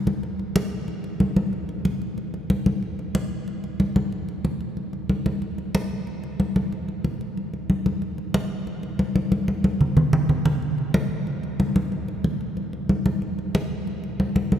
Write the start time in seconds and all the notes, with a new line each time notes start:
0.07 high conga
0.23 high conga
0.39 high conga
0.56 high conga
0.88 high conga
1.04 high conga
1.20 high conga
1.36 high conga
1.53 high conga
1.69 high conga
1.85 high conga
2.02 high conga
2.18 high conga
2.34 high conga
2.50 high conga
2.66 high conga
2.83 high conga
2.99 high conga
3.15 high conga
3.48 high conga
3.64 high conga
3.80 high conga
3.96 high conga
4.12 high conga
4.28 high conga
4.45 high conga
4.61 high conga
4.77 high conga
4.93 high conga
5.09 high conga
5.26 high conga
5.42 high conga
5.58 high conga
5.75 high conga
6.07 high conga
6.24 high conga
6.40 high conga
6.56 high conga
6.72 high conga
6.88 high conga
7.04 high conga
7.21 high conga
7.37 high conga
7.54 high conga
7.70 high conga
7.86 high conga
8.02 high conga
8.18 high conga
8.34 high conga
8.67 high conga
8.83 high conga
8.99 high conga
9.16 high conga
9.32 high conga
9.48 high conga
9.64 high conga
9.81 low conga
9.97 low conga
10.13 low conga
10.29 low conga
10.45 low conga
10.62 high conga
10.78 high conga
10.94 high conga
11.27 high conga
11.43 high conga
11.60 high conga
11.76 high conga
11.92 high conga
12.08 high conga
12.24 high conga
12.41 high conga
12.57 high conga
12.73 high conga
12.89 high conga
13.06 high conga
13.22 high conga
13.39 high conga
13.55 high conga
13.87 high conga
14.04 high conga
14.20 high conga
14.36 high conga
14.52 high conga